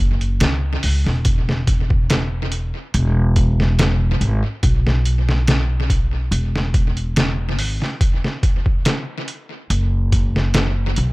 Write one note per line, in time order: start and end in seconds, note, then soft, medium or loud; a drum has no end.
0.00 0.41 F#1 loud
0.21 closed hi-hat soft
0.40 0.78 C#2 medium
0.40 snare loud
0.40 closed hi-hat medium
0.83 1.03 C#2 medium
0.83 open hi-hat medium
1.06 2.71 E1 medium
1.06 snare soft
1.25 kick loud
1.25 closed hi-hat medium
1.49 snare medium
1.67 kick medium
1.67 closed hi-hat medium
1.90 kick loud
2.10 snare loud
2.10 closed hi-hat medium
2.52 closed hi-hat medium
2.94 4.17 E1 loud
2.94 closed hi-hat loud
3.36 kick medium
3.36 closed hi-hat medium
3.60 snare medium
3.79 snare loud
3.79 closed hi-hat medium
4.21 4.41 G#1 medium
4.21 closed hi-hat medium
4.63 6.29 B1 medium
4.63 kick loud
4.63 closed hi-hat medium
4.87 snare medium
5.05 closed hi-hat medium
5.29 snare medium
5.47 snare loud
5.47 closed hi-hat medium
5.90 kick medium
5.90 closed hi-hat medium
6.31 7.58 E1 loud
6.31 closed hi-hat medium
6.56 snare medium
6.74 kick medium
6.74 closed hi-hat medium
6.97 closed hi-hat soft
7.16 snare loud
7.16 closed hi-hat medium
7.58 7.79 G#1 loud
7.58 open hi-hat medium
7.82 snare soft
8.01 kick loud
8.01 closed hi-hat medium
8.24 snare soft
8.43 kick loud
8.43 closed hi-hat medium
8.66 kick medium
8.85 snare loud
8.85 closed hi-hat medium
9.28 closed hi-hat medium
9.70 10.93 F#1 loud
9.70 closed hi-hat medium
10.12 kick loud
10.12 closed hi-hat medium
10.36 snare medium
10.54 snare loud
10.54 closed hi-hat medium
10.96 11.13 B1 medium
10.96 closed hi-hat medium